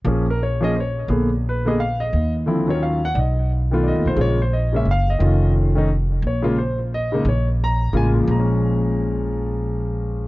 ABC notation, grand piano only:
X:1
M:3/4
L:1/8
Q:"Swing" 1/4=175
K:Bbm
V:1 name="Grand piano"
z B d e [cd]2 | z2 _c e f e- | e z2 d f g | [=d^d]2 z2 [=d^d] c |
d c e =e f _e- | e2 z4 | d2 c z e2 | d z b2 a z |
b6- | b6 |]
V:2 name="Grand piano"
[F,B,DA] z2 [F,B,DA] z2 | [=D,B,_CA] z2 [D,B,CA] z2 | z2 [=D,F,C=E] [_E,G,_DF]2 z | z3 [^D,=A,=B,^E]3 |
[D,A,B,F] z2 [D,A,B,D] z2 | [E,=A,DF]3 [E,A,DE] z2 | z [D,A,B,F] z3 [D,A,B,E] | z4 [D,A,B,F]2 |
[B,,F,A,D]6- | [B,,F,A,D]6 |]